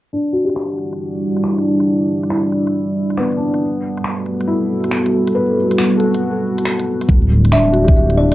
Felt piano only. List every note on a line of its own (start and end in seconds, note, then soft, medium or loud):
0.13 1.21 D4 medium
0.33 1.37 F#4 soft
0.45 1.48 G4 soft
2.30 3.39 E4 soft
3.17 3.79 B3 medium
3.37 3.96 D4 soft
4.48 5.56 E4 medium
5.35 6.43 B4 medium
5.78 6.87 F#4 medium
5.98 7.02 A4 soft
7.52 8.35 D4 medium
7.72 8.35 F#4 soft
7.84 8.35 G4 medium